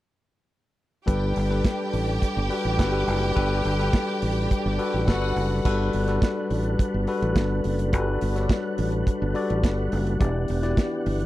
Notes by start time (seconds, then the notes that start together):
1.06 G1 G3 D4 G4 A4 B4 G5, kick, closed hi-hat
1.36 G1, open hi-hat
1.49 G3 G4 A4 B4, snare
1.65 kick, snare, closed hi-hat
1.93 A1, open hi-hat
2.22 kick, closed hi-hat
2.37 G1
2.49 G3 F#4 A4 B4, open hi-hat
2.65 A1
2.78 G1 G3 F#4 A4 B4, kick, snare, closed hi-hat
2.92 G3 G4 A4 B4
3.08 F#1, open hi-hat
3.35 G1 G3 G4 A4 B4, kick, closed hi-hat
3.65 G1, open hi-hat
3.78 G3 G4 A4 B4, snare
3.93 kick, snare, closed hi-hat
4.22 A1, open hi-hat
4.51 kick, closed hi-hat
4.66 G1
4.78 G3 F#4 A4 B4, open hi-hat
4.94 A1
5.07 G1 G3 F#4 A4 B4 F#5, kick, snare, closed hi-hat
5.21 G3 F#4 A4 B4
5.36 F#1, open hi-hat
5.64 G1 G3 D4 F#4 A4 B4 F#5, kick, crash
5.93 G1, open hi-hat
6.07 G3 F#4 A4 B4, snare, closed hi-hat
6.22 kick, snare, closed hi-hat
6.50 A1, open hi-hat
6.64 closed hi-hat
6.79 kick, closed hi-hat
6.94 G1
7.07 G3 F#4 A4 B4, open hi-hat
7.22 A1, closed hi-hat
7.36 G1, kick, snare, closed hi-hat
7.64 F#1, open hi-hat
7.79 closed hi-hat
7.92 G1 G3 F#4 A4 B4, kick, closed hi-hat
8.21 G1, open hi-hat
8.35 G3 F#4 A4 C#5, snare, closed hi-hat
8.43 D5
8.49 kick, snare, closed hi-hat
8.78 A1, open hi-hat
8.92 closed hi-hat
9.07 kick, closed hi-hat
9.22 G1
9.34 G3 F#4 A4 D5, open hi-hat
9.50 A1, closed hi-hat
9.64 G1, kick, snare, closed hi-hat
9.92 F#1, open hi-hat
10.07 closed hi-hat
10.19 E1 E3 B3 E4 G4 D5, kick, closed hi-hat
10.48 E1, open hi-hat
10.62 E3 E4 F#4 D5, snare, closed hi-hat
10.69 G4
10.77 kick, snare, closed hi-hat
11.06 G1, open hi-hat
11.20 closed hi-hat